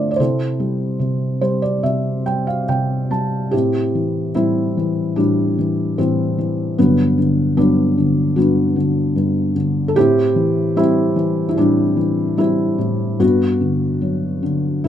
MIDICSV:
0, 0, Header, 1, 2, 480
1, 0, Start_track
1, 0, Tempo, 806452
1, 114, Time_signature, 4, 2, 24, 8
1, 595, Tempo, 843882
1, 2035, Tempo, 819672
1, 2995, Tempo, 800000
1, 6835, Tempo, 819672
1, 8773, End_track
2, 0, Start_track
2, 0, Title_t, "Felt piano"
2, 0, Program_c, 0, 0
2, 0, Control_c, 0, 64, 127
2, 0, Note_on_c, 0, 50, 48
2, 0, Note_on_c, 0, 57, 44
2, 0, Note_on_c, 0, 60, 56
2, 0, Note_on_c, 0, 62, 55
2, 0, Note_on_c, 0, 65, 55
2, 0, Note_on_c, 0, 69, 55
2, 0, Note_on_c, 0, 72, 66
2, 0, Note_on_c, 0, 74, 70
2, 60, Note_off_c, 0, 62, 0
2, 65, Note_off_c, 0, 74, 0
2, 65, Note_on_c, 0, 74, 52
2, 97, Note_off_c, 0, 72, 0
2, 97, Note_on_c, 0, 72, 61
2, 99, Note_off_c, 0, 50, 0
2, 107, Note_off_c, 0, 57, 0
2, 110, Note_off_c, 0, 74, 0
2, 116, Note_on_c, 0, 48, 53
2, 117, Note_on_c, 0, 64, 46
2, 119, Note_off_c, 0, 60, 0
2, 119, Note_off_c, 0, 69, 0
2, 119, Note_on_c, 0, 60, 46
2, 119, Note_on_c, 0, 69, 44
2, 123, Control_c, 0, 64, 0
2, 124, Note_off_c, 0, 65, 0
2, 221, Control_c, 0, 64, 127
2, 355, Note_on_c, 0, 55, 41
2, 582, Note_off_c, 0, 48, 0
2, 591, Note_on_c, 0, 48, 48
2, 822, Note_off_c, 0, 72, 0
2, 824, Note_off_c, 0, 55, 0
2, 830, Note_on_c, 0, 72, 54
2, 832, Note_on_c, 0, 55, 46
2, 940, Note_off_c, 0, 72, 0
2, 949, Note_on_c, 0, 74, 53
2, 1059, Note_off_c, 0, 74, 0
2, 1060, Note_off_c, 0, 48, 0
2, 1068, Note_on_c, 0, 48, 40
2, 1069, Note_on_c, 0, 76, 51
2, 1292, Note_off_c, 0, 76, 0
2, 1302, Note_off_c, 0, 55, 0
2, 1310, Note_on_c, 0, 55, 39
2, 1312, Note_on_c, 0, 79, 50
2, 1423, Note_off_c, 0, 79, 0
2, 1431, Note_on_c, 0, 77, 53
2, 1531, Note_off_c, 0, 64, 0
2, 1531, Note_off_c, 0, 69, 0
2, 1532, Note_off_c, 0, 60, 0
2, 1544, Note_off_c, 0, 48, 0
2, 1544, Note_off_c, 0, 77, 0
2, 1553, Note_on_c, 0, 48, 41
2, 1554, Note_on_c, 0, 79, 53
2, 1780, Note_off_c, 0, 79, 0
2, 1786, Note_off_c, 0, 55, 0
2, 1794, Note_on_c, 0, 55, 36
2, 1794, Note_on_c, 0, 81, 51
2, 2018, Note_off_c, 0, 81, 0
2, 2022, Note_off_c, 0, 48, 0
2, 2025, Note_on_c, 0, 67, 73
2, 2028, Note_off_c, 0, 55, 0
2, 2033, Note_on_c, 0, 64, 47
2, 2034, Note_on_c, 0, 60, 49
2, 2037, Note_on_c, 0, 45, 44
2, 2044, Control_c, 0, 64, 0
2, 2137, Control_c, 0, 64, 127
2, 2280, Note_on_c, 0, 52, 34
2, 2489, Note_off_c, 0, 67, 0
2, 2505, Note_off_c, 0, 64, 0
2, 2508, Note_off_c, 0, 45, 0
2, 2510, Note_off_c, 0, 60, 0
2, 2514, Note_on_c, 0, 64, 67
2, 2517, Note_on_c, 0, 45, 43
2, 2519, Note_on_c, 0, 60, 52
2, 2523, Note_on_c, 0, 55, 49
2, 2754, Note_off_c, 0, 52, 0
2, 2762, Note_on_c, 0, 52, 47
2, 2988, Note_off_c, 0, 55, 0
2, 2989, Note_on_c, 0, 62, 67
2, 2990, Note_off_c, 0, 45, 0
2, 2997, Note_on_c, 0, 55, 47
2, 2999, Note_on_c, 0, 45, 43
2, 3008, Note_off_c, 0, 64, 0
2, 3234, Note_off_c, 0, 52, 0
2, 3243, Note_on_c, 0, 52, 40
2, 3458, Note_off_c, 0, 60, 0
2, 3473, Note_off_c, 0, 45, 0
2, 3477, Note_off_c, 0, 55, 0
2, 3478, Note_off_c, 0, 52, 0
2, 3481, Note_on_c, 0, 60, 66
2, 3482, Note_on_c, 0, 45, 43
2, 3486, Note_on_c, 0, 55, 39
2, 3487, Note_on_c, 0, 52, 40
2, 3493, Note_off_c, 0, 62, 0
2, 3714, Note_off_c, 0, 52, 0
2, 3723, Note_on_c, 0, 52, 44
2, 3936, Note_off_c, 0, 55, 0
2, 3944, Note_off_c, 0, 45, 0
2, 3952, Note_off_c, 0, 52, 0
2, 3963, Note_on_c, 0, 59, 67
2, 3964, Note_on_c, 0, 54, 47
2, 3965, Control_c, 0, 64, 0
2, 3966, Note_on_c, 0, 50, 47
2, 3970, Note_on_c, 0, 43, 50
2, 3972, Note_off_c, 0, 60, 0
2, 4065, Control_c, 0, 64, 127
2, 4191, Note_off_c, 0, 50, 0
2, 4200, Note_on_c, 0, 50, 47
2, 4425, Note_off_c, 0, 43, 0
2, 4429, Note_off_c, 0, 59, 0
2, 4430, Note_off_c, 0, 54, 0
2, 4434, Note_on_c, 0, 43, 47
2, 4435, Note_on_c, 0, 62, 70
2, 4438, Note_on_c, 0, 59, 48
2, 4439, Note_on_c, 0, 54, 44
2, 4671, Note_off_c, 0, 50, 0
2, 4680, Note_on_c, 0, 50, 51
2, 4907, Note_off_c, 0, 43, 0
2, 4908, Note_on_c, 0, 66, 60
2, 4910, Note_off_c, 0, 59, 0
2, 4910, Note_off_c, 0, 62, 0
2, 4916, Note_on_c, 0, 43, 42
2, 4919, Note_on_c, 0, 59, 49
2, 4919, Note_on_c, 0, 62, 46
2, 5139, Note_off_c, 0, 50, 0
2, 5148, Note_on_c, 0, 50, 46
2, 5369, Note_off_c, 0, 54, 0
2, 5379, Note_off_c, 0, 43, 0
2, 5388, Note_on_c, 0, 43, 41
2, 5603, Note_off_c, 0, 66, 0
2, 5620, Note_off_c, 0, 50, 0
2, 5629, Note_on_c, 0, 50, 45
2, 5822, Note_on_c, 0, 69, 70
2, 5851, Note_off_c, 0, 59, 0
2, 5851, Note_off_c, 0, 62, 0
2, 5857, Note_off_c, 0, 43, 0
2, 5865, Note_off_c, 0, 50, 0
2, 5868, Note_off_c, 0, 69, 0
2, 5869, Note_on_c, 0, 67, 91
2, 5872, Note_on_c, 0, 45, 55
2, 5873, Note_on_c, 0, 60, 62
2, 5874, Note_on_c, 0, 64, 61
2, 5880, Control_c, 0, 64, 0
2, 5991, Control_c, 0, 64, 127
2, 6108, Note_on_c, 0, 52, 46
2, 6345, Note_off_c, 0, 64, 0
2, 6350, Note_on_c, 0, 55, 48
2, 6351, Note_off_c, 0, 60, 0
2, 6354, Note_on_c, 0, 64, 86
2, 6360, Note_on_c, 0, 60, 58
2, 6369, Note_off_c, 0, 67, 0
2, 6579, Note_off_c, 0, 52, 0
2, 6588, Note_on_c, 0, 52, 54
2, 6775, Note_off_c, 0, 64, 0
2, 6784, Note_on_c, 0, 64, 63
2, 6819, Note_off_c, 0, 45, 0
2, 6828, Note_on_c, 0, 45, 47
2, 6831, Note_off_c, 0, 64, 0
2, 6837, Note_on_c, 0, 62, 78
2, 6838, Note_off_c, 0, 55, 0
2, 6847, Note_on_c, 0, 55, 56
2, 7058, Note_off_c, 0, 52, 0
2, 7066, Note_on_c, 0, 52, 48
2, 7287, Note_off_c, 0, 60, 0
2, 7296, Note_off_c, 0, 55, 0
2, 7305, Note_on_c, 0, 55, 49
2, 7309, Note_on_c, 0, 64, 69
2, 7322, Note_on_c, 0, 60, 49
2, 7324, Note_off_c, 0, 62, 0
2, 7537, Note_off_c, 0, 45, 0
2, 7545, Note_on_c, 0, 45, 47
2, 7762, Note_off_c, 0, 52, 0
2, 7769, Note_off_c, 0, 60, 0
2, 7770, Note_off_c, 0, 55, 0
2, 7778, Note_off_c, 0, 45, 0
2, 7786, Note_on_c, 0, 43, 55
2, 7788, Note_on_c, 0, 66, 73
2, 7793, Control_c, 0, 64, 0
2, 7797, Note_on_c, 0, 62, 51
2, 7800, Note_off_c, 0, 64, 0
2, 7800, Note_on_c, 0, 59, 56
2, 7905, Control_c, 0, 64, 127
2, 8028, Note_on_c, 0, 50, 44
2, 8266, Note_on_c, 0, 54, 44
2, 8498, Note_off_c, 0, 50, 0
2, 8507, Note_on_c, 0, 50, 47
2, 8732, Note_off_c, 0, 43, 0
2, 8737, Note_off_c, 0, 62, 0
2, 8739, Note_off_c, 0, 59, 0
2, 8740, Note_off_c, 0, 54, 0
2, 8746, Note_off_c, 0, 50, 0
2, 8750, Note_on_c, 0, 64, 56
2, 8751, Note_on_c, 0, 45, 47
2, 8764, Control_c, 0, 64, 0
2, 8773, Note_off_c, 0, 45, 0
2, 8773, Note_off_c, 0, 64, 0
2, 8773, Note_off_c, 0, 66, 0
2, 8773, End_track
0, 0, End_of_file